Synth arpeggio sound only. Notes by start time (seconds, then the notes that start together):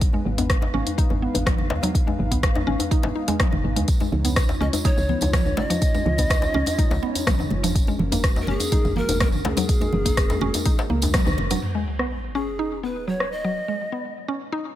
0.14 G#3
0.38 B3
0.74 C#4
0.98 D#4
1.22 B3
1.46 F#3
1.83 F#3
2.07 G#3
2.31 B3
2.67 C#4
2.91 D#4
3.15 D#4
3.28 G#3
3.39 D#4
3.76 G#3
4.01 G#3
4.25 B3
4.61 C#4
4.85 D#4
5.09 B3
5.33 F3
5.70 F3
5.94 G#3
6.19 B3
6.54 C#4
6.79 D#4
7.03 B3
7.27 F3
7.63 F3
7.88 G#3
8.12 A#3
8.48 C#4
8.72 D#4
8.97 A#3
9.21 F#3
9.57 F#3
9.81 G#3
10.05 A#3
10.41 C#4
10.65 D#4
10.90 A#3
11.14 F#3
11.51 F#3
11.75 G#3
11.99 B3
12.35 C#4
12.59 D#4
12.83 B3
13.08 F#3
13.45 F#3
13.68 G#3
13.92 B3
14.28 C#4
14.52 D#4